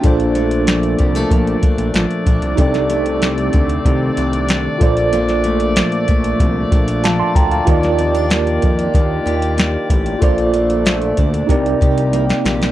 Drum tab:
HH |xxxxxxxxxxxxxxxx|xxxxxxxxx-xxx-xx|xxxxxxxxx-xxx-xx|xxxxxxxxx-xxx-xx|
SD |----o-------o---|-o--o-------o---|-o--o-------o---|-o--o-------o---|
BD |o-----o-o-o---o-|o-----o-o-----o-|------o-o-o---o-|o-----o-o-----o-|

HH |xxxxxxxxxxxxxxxx|
SD |----o--------ooo|
BD |o-----o-o-o-----|